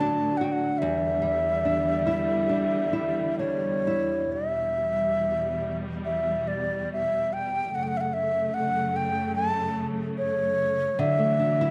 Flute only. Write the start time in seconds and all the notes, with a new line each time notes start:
Already playing: A5
0.37 F#5
0.44 G5
0.52 F#5
0.78 E5
3.39 C#5
4.32 E5
6.05 E5
6.48 D5
6.93 E5
7.33 G5
7.75 F#5
7.83 G5
7.88 F#5
7.97 E5 F#5
8.13 E5
8.54 F#5
8.96 G5
9.35 A5
10.18 C#5
11.00 E5